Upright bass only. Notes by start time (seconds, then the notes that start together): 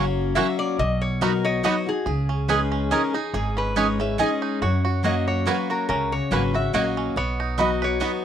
Already playing: F#1
0.79 B1
2.06 C#2
3.33 G#1
4.62 F#2
5.89 C#2
6.31 G#1
6.74 A#1
7.16 B1